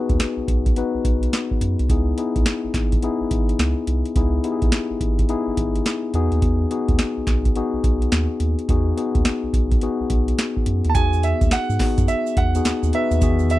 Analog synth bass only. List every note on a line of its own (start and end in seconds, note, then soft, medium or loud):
0.09 0.18 D#2 medium
0.37 0.41 B1 soft
0.48 0.71 B1 medium
0.94 0.99 B1 soft
1.05 1.28 B1 medium
1.61 1.76 F#2 medium
1.79 1.88 C2 loud
1.89 2.13 C#2 loud
2.36 2.44 B1 medium
2.64 2.68 G#1 soft
2.74 2.98 G#1 medium
3.21 3.25 G#1 soft
3.31 3.55 G#1 medium
3.59 3.74 C#2 loud
3.87 4.03 C2 medium
4.16 4.39 C#2 loud
4.62 4.71 B1 medium
4.90 4.95 G#1 soft
5.00 5.24 G#1 medium
5.47 5.51 G#1 soft
5.57 5.81 G#1 medium
6.14 6.29 E2 medium
6.32 6.41 D#2 medium
6.42 6.66 E2 loud
6.88 6.97 D#2 medium
7.17 7.21 B1 soft
7.27 7.51 B1 medium
7.73 7.78 B1 soft
7.84 8.07 B1 medium
8.12 8.27 D#2 loud
8.40 8.55 D#2 medium
8.69 8.92 E2 loud
9.15 9.24 D#2 medium
9.43 9.47 B1 soft
9.53 9.77 B1 medium
10.00 10.04 B1 soft
10.10 10.34 B1 medium
10.67 10.82 F#2 medium
10.85 10.94 D#2 medium
10.95 11.34 E2 loud
11.41 11.50 D#2 medium
11.70 11.78 G#2 medium
11.98 12.07 F#2 loud
12.37 12.60 E2 medium
12.65 12.72 D#2 soft
12.83 12.92 D#2 medium
13.11 13.20 D#2 medium
13.21 13.59 E2 loud